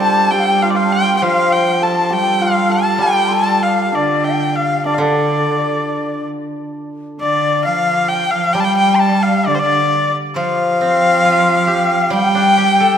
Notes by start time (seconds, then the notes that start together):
Already playing: G3 C4 D4 F4 G4 A4
0.02 A5
0.31 G3 G4 G5
0.40 F5
0.47 G5
0.62 F4 F5
0.70 D5
0.75 F4 F5
0.85 A5
0.92 G5
1.15 G4 G5
1.22 F3 F4 F5
1.52 G5
1.82 A4 A5
2.09 G3 G4 A5
2.13 G5
2.41 F4 F5
2.69 A4 A5
2.98 G3 G4 G5
3.03 G3 G5
3.27 A4 C6
3.33 A5
3.63 F5
3.92 D3 D4 D5
4.24 G5
4.50 G5
4.55 F5
4.85 D3 D4 D5
4.94 D3 F5
5.00 D3 D4 D5
7.20 D3 D5
7.65 F3 F5
8.08 G5
8.31 F3 F5
8.53 G3 G5 A5
8.60 A5
8.64 G5
8.77 G5
8.96 A5 C6
9.02 A5
9.20 F5 G5
9.25 F5
9.46 D3 D5
9.55 C5 D5
9.61 D3 D5
10.35 F3 F5
10.81 C4
11.25 F4
11.67 G4 F5
12.10 G3 G5
12.16 G5
12.35 D4
12.58 G4
12.80 A4